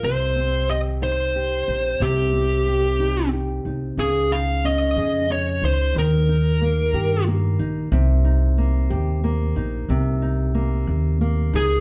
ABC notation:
X:1
M:6/8
L:1/8
Q:3/8=61
K:Cphr
V:1 name="Lead electric guitar"
c2 e c3 | G4 z2 | A f e2 d c | B4 z2 |
z6 | z4 z A |]
V:2 name="Nylon-string guitar"
C, C G E G E | C, C G E G E | D, E D A D E | E, E B, G B, E |
C, E B, G B, E | C, E B,2 B, E |]
V:3 name="Upright bass" clef=bass
C,,4- C,, B,,, | C,,4- C,, C,, | D,,3 F,,2 D,, | E,,3 G,,2 B,,, |
C,,3 E,,2 B,,, | C,,3 E,,2 D,, |]